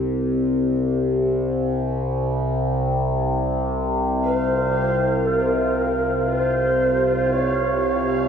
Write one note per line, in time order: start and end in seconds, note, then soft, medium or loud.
0.00 8.28 C2 medium
0.00 8.28 C3 medium
4.19 8.28 F4 medium
4.19 8.28 F5 medium
4.25 5.27 C5 loud
5.25 6.34 A#4 medium
6.33 7.34 C5 loud
7.32 8.28 C#5 loud